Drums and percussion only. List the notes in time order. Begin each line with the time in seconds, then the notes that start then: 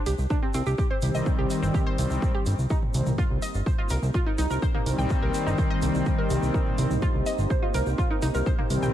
0.06 open hi-hat, shaker
0.18 shaker
0.30 kick, shaker
0.54 open hi-hat, shaker
0.66 shaker
0.78 kick, shaker
1.02 open hi-hat, shaker
1.15 shaker
1.26 kick, shaker
1.50 open hi-hat, shaker
1.63 shaker
1.74 kick, shaker
1.98 open hi-hat, shaker
2.10 shaker
2.22 kick, shaker
2.46 open hi-hat, shaker
2.59 shaker
2.70 kick, shaker
2.83 mid tom
2.94 open hi-hat, shaker
3.06 mid tom, shaker
3.18 kick, shaker
3.42 open hi-hat, shaker
3.54 shaker
3.66 kick, shaker
3.89 open hi-hat, shaker
4.03 shaker
4.14 kick, shaker
4.38 open hi-hat, shaker
4.50 shaker
4.62 kick, shaker
4.74 mid tom
4.86 open hi-hat, shaker
4.98 mid tom, shaker
5.09 kick, shaker
5.34 open hi-hat, shaker
5.47 shaker
5.58 kick, shaker
5.82 open hi-hat, shaker
5.95 shaker
6.06 kick, shaker
6.30 open hi-hat, shaker
6.43 shaker
6.54 kick, shaker
6.66 mid tom
6.78 open hi-hat, shaker
6.90 mid tom, shaker
7.02 kick, shaker
7.26 open hi-hat, shaker
7.38 shaker
7.50 kick, shaker
7.74 open hi-hat, shaker
7.86 shaker
7.98 kick, shaker
8.22 open hi-hat, shaker
8.35 shaker
8.46 kick, shaker
8.58 mid tom
8.70 open hi-hat, shaker
8.82 mid tom, shaker